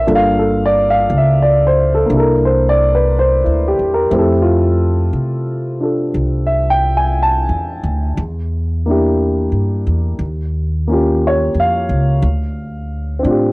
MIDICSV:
0, 0, Header, 1, 3, 480
1, 0, Start_track
1, 0, Tempo, 1013514
1, 35, Time_signature, 4, 2, 24, 8
1, 6404, End_track
2, 0, Start_track
2, 0, Title_t, "Grand piano"
2, 0, Program_c, 0, 0
2, 0, Control_c, 0, 64, 127
2, 31, Note_on_c, 0, 58, 55
2, 32, Note_on_c, 0, 62, 53
2, 33, Note_on_c, 0, 65, 50
2, 35, Note_on_c, 0, 69, 55
2, 41, Control_c, 0, 64, 0
2, 73, Note_on_c, 0, 77, 90
2, 111, Control_c, 0, 64, 127
2, 176, Note_off_c, 0, 69, 0
2, 183, Note_on_c, 0, 69, 55
2, 214, Note_off_c, 0, 77, 0
2, 310, Note_on_c, 0, 74, 86
2, 351, Note_off_c, 0, 69, 0
2, 410, Note_off_c, 0, 74, 0
2, 427, Note_on_c, 0, 77, 86
2, 506, Note_off_c, 0, 77, 0
2, 557, Note_on_c, 0, 76, 75
2, 675, Note_on_c, 0, 74, 71
2, 696, Note_off_c, 0, 76, 0
2, 790, Note_on_c, 0, 72, 80
2, 837, Note_off_c, 0, 74, 0
2, 889, Note_off_c, 0, 72, 0
2, 921, Note_on_c, 0, 69, 65
2, 967, Note_off_c, 0, 58, 0
2, 974, Note_on_c, 0, 58, 54
2, 986, Note_off_c, 0, 62, 0
2, 993, Note_off_c, 0, 69, 0
2, 993, Note_on_c, 0, 62, 47
2, 994, Note_off_c, 0, 65, 0
2, 1002, Control_c, 0, 64, 0
2, 1009, Note_on_c, 0, 64, 44
2, 1027, Note_on_c, 0, 69, 59
2, 1039, Note_on_c, 0, 70, 68
2, 1095, Control_c, 0, 64, 127
2, 1161, Note_on_c, 0, 72, 71
2, 1177, Note_off_c, 0, 70, 0
2, 1274, Note_on_c, 0, 74, 87
2, 1320, Note_off_c, 0, 72, 0
2, 1372, Note_off_c, 0, 74, 0
2, 1396, Note_on_c, 0, 71, 72
2, 1471, Note_off_c, 0, 71, 0
2, 1511, Note_on_c, 0, 72, 75
2, 1621, Note_off_c, 0, 64, 0
2, 1628, Note_on_c, 0, 64, 46
2, 1653, Note_off_c, 0, 72, 0
2, 1742, Note_on_c, 0, 67, 72
2, 1793, Note_off_c, 0, 64, 0
2, 1845, Note_off_c, 0, 67, 0
2, 1866, Note_on_c, 0, 70, 71
2, 1943, Note_on_c, 0, 57, 56
2, 1944, Note_off_c, 0, 58, 0
2, 1946, Note_off_c, 0, 70, 0
2, 1953, Note_on_c, 0, 60, 53
2, 1954, Note_off_c, 0, 62, 0
2, 1961, Control_c, 0, 64, 0
2, 1961, Note_on_c, 0, 64, 55
2, 1968, Note_on_c, 0, 67, 60
2, 1971, Note_off_c, 0, 69, 0
2, 1983, Note_on_c, 0, 69, 66
2, 2040, Control_c, 0, 64, 127
2, 2093, Note_on_c, 0, 65, 73
2, 2129, Note_off_c, 0, 69, 0
2, 2200, Note_off_c, 0, 65, 0
2, 2749, Note_on_c, 0, 62, 40
2, 2754, Note_on_c, 0, 65, 40
2, 2760, Note_on_c, 0, 69, 47
2, 3062, Note_on_c, 0, 76, 68
2, 3174, Note_on_c, 0, 79, 81
2, 3229, Note_off_c, 0, 76, 0
2, 3281, Note_off_c, 0, 79, 0
2, 3301, Note_on_c, 0, 80, 73
2, 3382, Note_off_c, 0, 80, 0
2, 3422, Note_on_c, 0, 81, 80
2, 3867, Note_off_c, 0, 57, 0
2, 3868, Note_off_c, 0, 81, 0
2, 3871, Note_off_c, 0, 62, 0
2, 3872, Note_off_c, 0, 60, 0
2, 3873, Note_off_c, 0, 65, 0
2, 3876, Note_off_c, 0, 64, 0
2, 3876, Note_off_c, 0, 69, 0
2, 3880, Note_off_c, 0, 67, 0
2, 3880, Control_c, 0, 64, 0
2, 3963, Control_c, 0, 64, 127
2, 4195, Note_on_c, 0, 58, 53
2, 4203, Note_on_c, 0, 62, 46
2, 4210, Note_on_c, 0, 64, 45
2, 4218, Note_on_c, 0, 67, 60
2, 4828, Note_off_c, 0, 58, 0
2, 4832, Note_off_c, 0, 62, 0
2, 4836, Note_off_c, 0, 64, 0
2, 4839, Control_c, 0, 64, 0
2, 4840, Note_off_c, 0, 67, 0
2, 4920, Control_c, 0, 64, 127
2, 5150, Note_on_c, 0, 58, 55
2, 5159, Note_on_c, 0, 61, 50
2, 5168, Note_on_c, 0, 65, 50
2, 5177, Note_on_c, 0, 67, 65
2, 5337, Note_on_c, 0, 73, 74
2, 5480, Note_off_c, 0, 73, 0
2, 5492, Note_on_c, 0, 77, 83
2, 5785, Note_off_c, 0, 58, 0
2, 5790, Note_off_c, 0, 61, 0
2, 5794, Note_off_c, 0, 65, 0
2, 5796, Control_c, 0, 64, 0
2, 5799, Note_off_c, 0, 67, 0
2, 5872, Control_c, 0, 64, 127
2, 5942, Note_off_c, 0, 77, 0
2, 6248, Note_on_c, 0, 60, 58
2, 6265, Note_on_c, 0, 62, 55
2, 6284, Note_on_c, 0, 65, 56
2, 6302, Note_on_c, 0, 67, 61
2, 6404, Note_off_c, 0, 60, 0
2, 6404, Note_off_c, 0, 62, 0
2, 6404, Note_off_c, 0, 65, 0
2, 6404, Note_off_c, 0, 67, 0
2, 6404, End_track
3, 0, Start_track
3, 0, Title_t, "Upright bass"
3, 0, Program_c, 1, 32
3, 37, Note_on_c, 1, 31, 80
3, 497, Note_off_c, 1, 31, 0
3, 519, Note_on_c, 1, 37, 71
3, 978, Note_off_c, 1, 37, 0
3, 993, Note_on_c, 1, 36, 75
3, 1615, Note_off_c, 1, 36, 0
3, 1638, Note_on_c, 1, 38, 55
3, 1785, Note_off_c, 1, 38, 0
3, 1795, Note_on_c, 1, 40, 61
3, 1944, Note_off_c, 1, 40, 0
3, 1948, Note_on_c, 1, 41, 78
3, 2412, Note_off_c, 1, 41, 0
3, 2430, Note_on_c, 1, 48, 68
3, 2893, Note_off_c, 1, 48, 0
3, 2909, Note_on_c, 1, 36, 71
3, 3532, Note_off_c, 1, 36, 0
3, 3547, Note_on_c, 1, 40, 61
3, 3698, Note_off_c, 1, 40, 0
3, 3710, Note_on_c, 1, 38, 70
3, 3860, Note_off_c, 1, 38, 0
3, 3870, Note_on_c, 1, 40, 83
3, 4492, Note_off_c, 1, 40, 0
3, 4508, Note_on_c, 1, 43, 60
3, 4659, Note_off_c, 1, 43, 0
3, 4673, Note_on_c, 1, 40, 66
3, 4821, Note_off_c, 1, 40, 0
3, 4825, Note_on_c, 1, 39, 79
3, 5449, Note_off_c, 1, 39, 0
3, 5467, Note_on_c, 1, 41, 63
3, 5617, Note_off_c, 1, 41, 0
3, 5631, Note_on_c, 1, 37, 69
3, 5780, Note_off_c, 1, 37, 0
3, 5789, Note_on_c, 1, 38, 93
3, 6250, Note_off_c, 1, 38, 0
3, 6273, Note_on_c, 1, 45, 74
3, 6404, Note_off_c, 1, 45, 0
3, 6404, End_track
0, 0, End_of_file